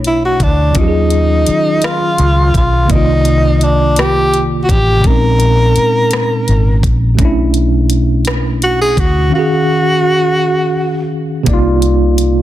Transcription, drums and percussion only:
0.04 closed hi-hat soft
0.40 kick medium
0.40 closed hi-hat medium
0.75 kick loud
0.75 closed hi-hat medium
1.10 closed hi-hat soft
1.47 closed hi-hat medium
1.82 cross-stick loud
1.82 closed hi-hat medium
2.18 closed hi-hat soft
2.54 kick medium
2.54 closed hi-hat medium
2.90 kick loud
2.90 closed hi-hat medium
3.25 closed hi-hat soft
3.61 closed hi-hat medium
3.96 cross-stick loud
3.96 closed hi-hat medium
4.34 closed hi-hat soft
4.69 kick medium
4.69 closed hi-hat medium
5.04 kick loud
5.04 closed hi-hat medium
5.40 closed hi-hat soft
5.76 closed hi-hat medium
6.11 cross-stick loud
6.11 closed hi-hat medium
6.48 closed hi-hat soft
6.83 kick medium
6.83 closed hi-hat medium
7.19 kick loud
7.19 closed hi-hat medium
7.54 closed hi-hat medium
7.90 closed hi-hat medium
8.25 cross-stick loud
8.25 closed hi-hat medium
8.62 closed hi-hat soft
8.97 kick medium
8.97 closed hi-hat medium
11.46 kick loud
11.46 closed hi-hat medium
11.82 closed hi-hat soft
12.18 closed hi-hat medium

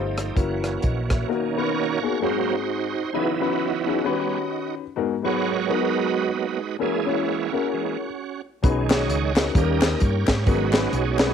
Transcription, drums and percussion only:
0.18 cross-stick medium
0.18 closed hi-hat medium
0.37 kick loud
0.37 closed hi-hat medium
0.64 cross-stick medium
0.64 closed hi-hat medium
0.82 kick medium
0.82 closed hi-hat medium
1.10 kick medium
1.10 cross-stick medium
1.10 closed hi-hat medium
8.64 kick loud
8.64 closed hi-hat medium
8.90 snare loud
8.90 clap loud
8.90 closed hi-hat medium
9.10 closed hi-hat medium
9.36 snare loud
9.36 clap medium
9.36 closed hi-hat medium
9.55 kick loud
9.55 closed hi-hat loud
9.82 snare loud
9.82 clap loud
9.82 closed hi-hat medium
10.00 kick loud
10.00 closed hi-hat medium
10.27 kick medium
10.27 snare loud
10.27 clap loud
10.27 closed hi-hat medium
10.47 kick loud
10.47 closed hi-hat medium
10.73 snare loud
10.73 clap loud
10.73 closed hi-hat medium
10.93 closed hi-hat medium
11.19 snare loud
11.19 clap medium
11.19 closed hi-hat medium

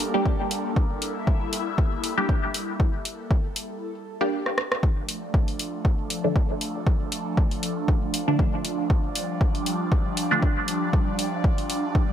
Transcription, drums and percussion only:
0.00 open hi-hat medium
0.26 kick loud
0.51 open hi-hat medium
0.76 kick loud
1.02 open hi-hat medium
1.27 kick loud
1.53 open hi-hat medium
1.78 kick loud
2.04 open hi-hat medium
2.29 kick loud
2.54 open hi-hat medium
2.80 kick loud
3.05 open hi-hat medium
3.31 kick loud
3.56 open hi-hat medium
4.46 cross-stick medium
4.58 cross-stick medium
4.72 cross-stick medium
4.83 kick loud
5.09 open hi-hat medium
5.34 kick loud
5.48 open hi-hat soft
5.59 open hi-hat medium
5.85 kick loud
6.10 open hi-hat medium
6.36 kick loud
6.61 open hi-hat medium
6.87 kick loud
7.12 open hi-hat medium
7.37 kick loud
7.51 open hi-hat soft
7.63 open hi-hat medium
7.88 kick loud
8.14 open hi-hat medium
8.39 kick loud
8.65 open hi-hat medium
8.90 kick loud
9.15 open hi-hat medium
9.41 kick loud
9.55 open hi-hat soft
9.66 open hi-hat medium
9.92 kick loud
10.17 open hi-hat medium
10.42 kick loud
10.68 open hi-hat medium
10.93 kick loud
11.19 open hi-hat medium
11.44 kick loud
11.58 open hi-hat soft
11.70 open hi-hat medium
11.95 kick loud

